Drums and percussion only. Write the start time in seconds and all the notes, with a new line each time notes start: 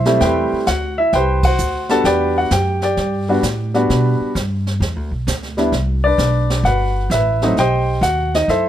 0.05 snare
0.20 brush sweep, snare
0.67 snare, hi-hat pedal
1.13 brush sweep, snare
1.43 kick, ride
1.58 hi-hat pedal
1.89 snare
2.05 brush sweep, snare
2.51 snare, hi-hat pedal
2.82 snare
2.97 brush sweep, snare
3.43 snare, hi-hat pedal
3.74 snare
3.90 brush sweep, snare
4.36 snare, hi-hat pedal
4.67 snare
4.82 brush sweep, snare
5.27 snare, hi-hat pedal
5.43 snare
5.58 snare
5.72 brush sweep, snare
6.18 snare, hi-hat pedal
6.50 snare
6.65 brush sweep, snare
7.11 snare, hi-hat pedal
7.42 snare
7.57 brush sweep, snare
8.02 snare, hi-hat pedal
8.34 snare
8.49 brush sweep, snare